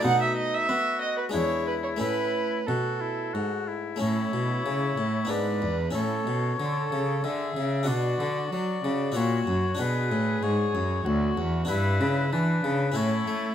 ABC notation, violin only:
X:1
M:3/4
L:1/16
Q:1/4=93
K:A
V:1 name="Violin"
f e ^d e3 d B c2 B c | B4 A6 z2 | E8 B4 | A4 A4 G4 |
F8 F4 | G8 F4 | [K:Edor] E4 D4 E4 |]